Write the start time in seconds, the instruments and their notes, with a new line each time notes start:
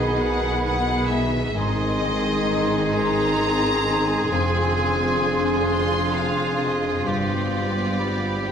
Already playing: double bass section B1, cello section B2, harp B2 B3 D#4 G#4, bassoon D#3, viola section D#3 B3, clarinet B3, french horn section B3 G#4, violin section D#4 G#4 D#5, oboe G#4, flute section B5
0.18 harp G#4, violin section F#5
0.64 harp B3, violin section F#5
1.09 harp G#3, violin section E5
1.54 double bass section G#1, harp G#2, cello section G#2, bassoon D#3, viola section D#3 C4, french horn section C4 G#4, clarinet D#4, violin section D#4 G#4 D#5, oboe G#4, flute section C6
2.01 harp C4
2.48 harp D#4
2.94 harp G#4, violin section A#5
3.41 harp C4
3.86 harp D#3
4.31 double bass section F1, harp F2, cello section F2, viola section D3, bassoon F3, french horn section C4 G#4, clarinet D4, violin section F4 G#5
4.77 harp C4
5.22 harp D4
5.67 harp G#4, violin section C6
6.14 harp C4, french horn section C4 G#4, violin section F5
6.61 harp C3, violin section D#5
7.05 double bass section G1, cello section G2, harp G2, viola section G3 B3, french horn section B3 F4, violin section G4 D5, oboe G4
7.53 harp B3
7.99 harp F4, flute section B5
8.47 harp G4, violin section G5